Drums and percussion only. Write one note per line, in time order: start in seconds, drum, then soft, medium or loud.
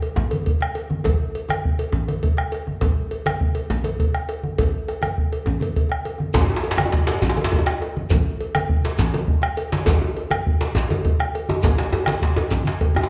0.02 cowbell soft
0.02 djembe slap soft
0.16 djembe slap medium
0.16 high conga soft
0.16 djembe bass medium
0.16 low conga medium
0.31 cowbell medium
0.31 djembe tone medium
0.31 high conga medium
0.46 bombo low medium
0.46 cowbell soft
0.61 bombo rim medium
0.61 djembe slap medium
0.75 bombo rim soft
0.75 cowbell soft
0.75 djembe slap soft
0.90 djembe tone medium
0.90 high conga medium
1.04 bombo low medium
1.04 cowbell medium
1.04 djembe slap medium
1.04 djembe bass medium
1.04 low conga medium
1.35 cowbell soft
1.49 bombo rim medium
1.49 cowbell soft
1.49 djembe slap soft
1.49 djembe tone soft
1.49 high conga medium
1.65 bombo low medium
1.78 cowbell soft
1.78 djembe slap soft
1.92 djembe slap medium
1.92 high conga soft
1.92 djembe bass medium
1.92 low conga medium
2.08 cowbell soft
2.08 djembe tone medium
2.08 high conga medium
2.23 bombo low loud
2.23 cowbell soft
2.37 bombo rim medium
2.37 djembe slap medium
2.52 bombo rim soft
2.52 cowbell soft
2.52 djembe slap soft
2.67 djembe tone soft
2.67 high conga soft
2.81 bombo low medium
2.81 cowbell medium
2.81 djembe slap medium
2.81 djembe bass medium
2.81 low conga medium
3.11 cowbell soft
3.26 bombo rim medium
3.26 cowbell soft
3.26 djembe slap medium
3.26 high conga medium
3.26 djembe tone medium
3.41 bombo low medium
3.55 cowbell soft
3.55 djembe slap soft
3.70 djembe slap medium
3.70 high conga soft
3.70 djembe bass medium
3.70 low conga medium
3.84 cowbell medium
3.84 high conga medium
3.84 djembe tone medium
4.00 bombo low medium
4.00 cowbell soft
4.14 bombo rim medium
4.14 djembe slap soft
4.29 bombo rim soft
4.29 cowbell soft
4.29 djembe slap soft
4.43 high conga soft
4.43 djembe tone soft
4.58 bombo low medium
4.58 cowbell medium
4.58 djembe slap medium
4.58 high conga soft
4.58 djembe bass medium
4.58 low conga medium
4.73 djembe slap soft
4.88 bombo rim soft
4.88 cowbell soft
4.88 djembe slap soft
5.02 bombo rim medium
5.02 cowbell soft
5.02 djembe slap soft
5.02 djembe tone soft
5.02 high conga medium
5.18 bombo low medium
5.33 cowbell soft
5.46 djembe slap medium
5.46 high conga soft
5.46 djembe bass medium
5.46 low conga medium
5.60 cowbell medium
5.60 djembe slap soft
5.60 djembe tone medium
5.60 high conga medium
5.76 bombo low medium
5.76 cowbell soft
5.76 high conga soft
5.89 bombo rim medium
5.89 djembe slap soft
6.05 bombo rim soft
6.05 cowbell soft
6.05 high conga soft
6.18 djembe tone soft
6.18 high conga medium
6.34 bombo low loud
6.34 cowbell medium
6.34 djembe slap medium
6.34 djembe bass medium
6.34 low conga medium
6.34 shekere medium
6.42 djembe tone medium
6.50 djembe tone medium
6.56 djembe slap medium
6.64 cowbell soft
6.71 djembe slap loud
6.78 bombo rim medium
6.78 cowbell soft
6.78 djembe slap medium
6.78 djembe tone medium
6.78 high conga medium
6.86 djembe tone medium
6.92 bombo low loud
6.92 djembe slap medium
7.07 cowbell soft
7.07 djembe slap loud
7.14 djembe tone medium
7.22 djembe slap medium
7.22 high conga soft
7.22 djembe tone medium
7.22 djembe bass medium
7.22 low conga medium
7.22 shekere medium
7.29 djembe slap medium
7.37 cowbell medium
7.37 djembe tone medium
7.37 high conga medium
7.44 djembe slap loud
7.52 bombo low medium
7.52 cowbell soft
7.52 djembe tone medium
7.59 djembe tone medium
7.66 bombo rim medium
7.66 djembe slap medium
7.66 djembe slap soft
7.82 bombo rim soft
7.82 cowbell soft
7.82 djembe slap soft
7.96 djembe tone medium
7.96 high conga medium
8.10 bombo low medium
8.10 cowbell medium
8.10 djembe slap medium
8.10 djembe bass medium
8.10 low conga medium
8.10 shekere medium
8.41 cowbell soft
8.55 bombo rim medium
8.55 cowbell soft
8.55 djembe slap medium
8.55 high conga medium
8.55 djembe tone medium
8.69 bombo low loud
8.84 cowbell medium
8.84 djembe slap soft
8.84 djembe slap medium
8.98 djembe slap medium
8.98 high conga soft
8.98 djembe bass medium
8.98 low conga medium
8.98 shekere medium
9.13 cowbell medium
9.13 djembe tone medium
9.13 high conga medium
9.28 bombo low loud
9.42 bombo rim medium
9.42 djembe slap medium
9.57 bombo rim soft
9.57 cowbell medium
9.57 djembe slap soft
9.72 djembe slap medium
9.72 djembe tone medium
9.72 high conga medium
9.86 cowbell medium
9.86 djembe slap medium
9.86 djembe bass medium
9.86 low conga medium
9.86 shekere medium
9.88 bombo low loud
9.88 djembe slap medium
10.02 djembe tone medium
10.17 cowbell soft
10.30 bombo rim medium
10.30 cowbell soft
10.30 djembe slap medium
10.30 djembe tone medium
10.30 high conga medium
10.47 bombo low loud
10.61 cowbell soft
10.61 djembe slap soft
10.61 djembe slap medium
10.75 djembe slap medium
10.75 high conga soft
10.75 low conga medium
10.75 djembe bass medium
10.75 shekere medium
10.77 djembe slap medium
10.89 cowbell medium
10.89 djembe tone medium
10.89 high conga medium
10.91 djembe tone medium
11.05 bombo low loud
11.05 cowbell soft
11.20 bombo rim medium
11.20 djembe slap medium
11.34 bombo rim soft
11.34 cowbell soft
11.34 djembe slap soft
11.49 high conga medium
11.49 djembe tone medium
11.49 djembe tone loud
11.63 bombo low medium
11.63 cowbell medium
11.63 djembe slap medium
11.63 high conga soft
11.63 low conga medium
11.63 djembe bass medium
11.63 shekere medium
11.77 bombo rim soft
11.77 djembe slap medium
11.77 high conga soft
11.77 shekere soft
11.92 bombo rim soft
11.92 cowbell soft
11.92 djembe slap soft
11.92 djembe tone loud
12.06 bombo rim medium
12.06 cowbell soft
12.06 djembe slap soft
12.06 djembe slap medium
12.06 high conga medium
12.06 djembe tone soft
12.22 bombo low loud
12.22 djembe slap medium
12.22 shekere soft
12.36 bombo rim soft
12.36 cowbell medium
12.36 djembe tone loud
12.51 bombo rim soft
12.51 djembe slap medium
12.51 low conga medium
12.51 djembe bass medium
12.51 shekere soft
12.64 djembe slap medium
12.64 high conga medium
12.64 djembe tone medium
12.64 shekere soft
12.81 bombo rim soft
12.81 bombo low loud
12.81 cowbell medium
12.94 bombo rim medium
12.94 djembe slap medium
12.94 djembe tone loud
12.94 low conga soft
13.03 djembe slap medium